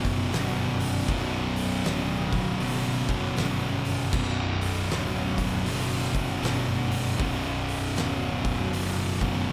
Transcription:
Already playing: F#1 B1 F#2 B2
0.04 B1 F#2 B2, kick, open hi-hat
0.31 G1 B1 F#2 B2, snare, open hi-hat
0.80 open hi-hat
1.07 B0 B1 F#2 B2, kick, open hi-hat
1.56 open hi-hat
1.84 D1, snare, open hi-hat
2.32 D1, kick, open hi-hat
2.60 F#1 B1 F#2 B2, open hi-hat
3.08 B1 F#2 B2, kick, open hi-hat
3.36 G1 B1 F#2 B2, snare, open hi-hat
3.85 open hi-hat
4.12 B0 B1 F#2 B2, kick, crash
4.61 open hi-hat
4.89 D1, snare, open hi-hat
5.38 D1, kick, open hi-hat
5.66 F#1 B1 F#2 B2, open hi-hat
6.14 B1 F#2 B2, kick, open hi-hat
6.42 G1 B1 F#2 B2, snare, open hi-hat
6.92 open hi-hat
7.18 B0 B1 F#2 B2, kick, open hi-hat
7.69 open hi-hat
7.96 D1, snare, open hi-hat
8.45 D1, kick, open hi-hat
8.72 F#1 B1 F#2 B2, open hi-hat
9.20 B1 F#2 B2, kick, open hi-hat
9.49 G1 B1

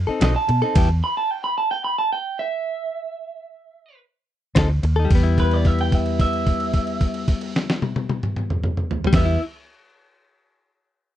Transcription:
0.07 C4 D#4 A4, muted fingered electric bass stroke
0.21 B1 F#3 C4 D#4 A4 D#5, snare, ride
0.35 A5, muted clean electric guitar stroke
0.48 B2, muted clean electric guitar stroke, ride
0.62 C4 D#4 A4
0.75 E2 G3 B3 E4 G4, kick, crash, ride
0.89 muted clean electric guitar stroke
1.04 B5
1.17 A5
1.31 G5
1.44 B5
1.58 A5
1.71 G5
1.84 B5
1.99 A5
2.13 G5
2.39 E5
4.55 D2 C4 D#4 A4, kick, snare, ride
4.83 D#2, muted clean electric guitar stroke, ride
4.96 D#4 A4
5.05 G3
5.10 E2, kick, crash
5.15 B3
5.23 E4
5.38 B4, kick, crash
5.51 D5, crash
5.65 E5, kick, crash
5.79 G5, crash
5.92 E5, kick, crash
6.06 crash
6.19 E5, kick, crash
6.33 crash
6.47 kick, crash
6.60 crash
6.73 kick, crash
6.87 crash
7.01 kick, crash
7.14 crash
7.28 kick, crash
7.41 crash
7.56 snare
7.70 snare
7.82 high tom
7.96 high tom
8.09 high tom
8.23 mid tom
8.36 mid tom
8.50 mid tom
8.63 mid tom
8.77 mid tom
8.91 floor tom
9.04 G3, floor tom
9.13 E2 E5, kick, snare, crash
9.17 B3
9.25 E4

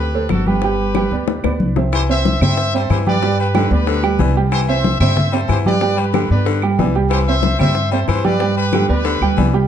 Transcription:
Already playing: D2 G4 B4
0.14 A3 A4 C5, high conga
0.29 G1 F#4 A4, high bongo, low bongo, high conga, claves
0.46 G3 G4 B4 G5, high conga
0.62 G3 G4 G5, high bongo
0.79 high conga
0.95 G3 G4 G5, high bongo, high conga, claves
1.11 D2 B3 B4 D5, high bongo, high conga
1.28 high bongo, high conga
1.44 D2 B3 B4 D5, high bongo, high conga, claves
1.60 C2, high conga
1.76 C4 C5 E5, low bongo, high conga
1.93 E3 G4 C5, high bongo, claves
2.09 C4 C5 E5, high conga
2.25 high bongo, high conga
2.41 G2 G3 C4 C5 E5, high bongo, high conga, low conga, claves
2.58 high bongo, high conga
2.74 G3 C4 A4 C5 E5, high bongo, high conga
2.90 G2 E3 G4 C5, high bongo, low bongo, high conga, claves
3.06 G3 G4 B4 D5 G5, high bongo, high conga
3.23 G3 G4 G5, high bongo, high conga
3.39 G3 G4 B4, high conga
3.54 D3 G3 G4 G5, high bongo, high conga, claves
3.71 D2 B3 G4 B4 D5, high bongo, high conga
3.87 D3, high bongo, high conga
4.03 G3 G4 G5, high bongo, high conga, claves
4.19 C2 E3 B3 B4 D5, high bongo, low bongo, high conga
4.35 G3 G4 G5, high bongo, high conga
4.52 E3 G4 C5, high bongo, high conga, claves
4.68 C4 C5 E5, high conga
4.84 high bongo, high conga
5.00 G2 G3 C4 C5 E5, high bongo, high conga, low conga, claves
5.17 high bongo, high conga, low conga
5.32 G3 C4 A4 C5 E5, high bongo, high conga
5.49 G2 E3 G4 C5, high bongo, low bongo, high conga, claves
5.65 G3 G4 B4 D5 G5, high bongo, high conga
5.81 G3 G4 G5, high bongo, high conga
5.97 G3 G4 B4, high conga
6.13 D3 G3 G4 G5, high bongo, high conga, claves
6.30 G2 B3 G4 B4 D5, high bongo, high conga
6.46 D3, high bongo, high conga
6.62 G3 G4 G5, high bongo, high conga, claves
6.79 C2 E3 B3 B4 D5, high bongo, low bongo, high conga
6.95 G3 G4 G5, high bongo, high conga
7.10 E3 G4 C5, high bongo, high conga, claves
7.28 C4 C5 E5, high conga
7.43 high bongo, high conga
7.59 G2 G3 C4 C5 E5, high bongo, high conga, low conga, claves
7.75 high bongo, high conga
7.91 G3 C4 A4 C5 E5, high bongo, high conga
8.08 G2 E3 G4 C5, high bongo, low bongo, high conga, claves
8.24 G3 G4 B4 D5 G5, high bongo, high conga
8.40 G3 G4 G5, high bongo, high conga
8.57 G3 G4 B4, high conga
8.73 D3 G3 G4 G5, high bongo, high conga, claves
8.89 D2 B3 G4 B4 D5, high bongo, high conga
9.05 D3, high bongo, high conga
9.21 D2 G3 G4 G5, high bongo, high conga, claves
9.37 C2 E3 B3 B4 D5, high bongo, low bongo, high conga
9.54 G3 G4 G5, high bongo, high conga

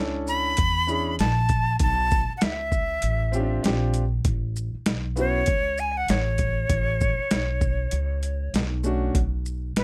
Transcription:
Already playing: C#2 C#4 D4 E4 A4
0.27 B5, shaker
0.57 E2, kick, closed hi-hat
0.87 C#4 D4 E4 G#4, shaker
1.19 A#1 A5, snare, closed hi-hat
1.49 kick, closed hi-hat, shaker
1.79 B1 A5, kick, closed hi-hat
2.11 kick, shaker
2.29 muted upright bass stroke
2.37 F#5, closed hi-hat
2.42 C#2 E5, snare
2.72 kick, shaker
3.02 A1, closed hi-hat
3.32 C4 C#4 F4 G4, shaker
3.40 D4
3.63 A#1 C4 D4 F4 G4, snare, closed hi-hat
3.94 closed hi-hat, shaker
4.25 A1, kick, closed hi-hat
4.56 shaker
4.75 muted upright bass stroke
4.86 B1, snare, closed hi-hat
5.16 B3 C#4 E4 F#4 C#5, shaker
5.46 C#2, kick, closed hi-hat
5.78 G#5, shaker
5.97 F#5
6.08 A1 C#5, snare, closed hi-hat
6.38 kick, closed hi-hat, shaker
6.70 A1, kick, closed hi-hat
7.01 kick, shaker
7.19 muted upright bass stroke
7.31 B1, snare, closed hi-hat
7.61 kick, shaker
7.91 C#2, closed hi-hat
8.23 closed hi-hat, shaker
8.54 B1, snare, closed hi-hat
8.83 A3 C#4 D4 F#4, shaker
9.15 B1, kick, closed hi-hat
9.46 shaker
9.76 A1 B4, snare, closed hi-hat

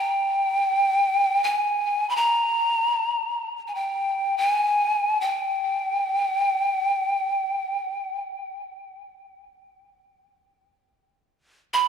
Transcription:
Already playing: G5
1.44 G#5
2.10 B5
2.16 A#5
3.68 G#5
3.75 G5
4.38 G#5
5.21 G5
11.73 B5

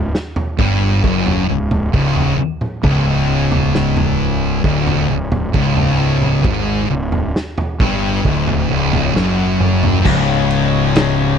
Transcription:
Already playing: C#1
0.15 snare
0.36 floor tom
0.59 G1 G2, kick
1.04 F#1 F#2, kick
1.26 floor tom
1.49 C#1 C#2
1.71 floor tom, mid tom
1.94 C#1 C#2, kick
2.16 floor tom
2.39 muted distorted electric guitar stroke, muted fingered electric bass stroke
2.61 mid tom
2.83 C#1 C#2, kick, floor tom
3.52 floor tom
3.75 snare
3.97 floor tom
4.64 D1 D2, kick
4.87 floor tom
5.09 C#1 C#2
5.32 floor tom, mid tom
5.54 C#1 C#2, kick
5.77 floor tom
6.22 mid tom
6.44 G#1 G#2, kick, floor tom
6.90 C#1 C#2
7.12 floor tom
7.36 snare
7.58 floor tom
7.80 G1 G2, kick, mid tom
8.25 D1 D2, kick
8.47 floor tom
8.70 C#1 C#2
8.93 floor tom, mid tom
9.15 F#1 F#2, snare
9.60 mid tom
9.83 floor tom
10.05 C#1 C#2, kick, crash
10.50 ride
10.95 snare, ride

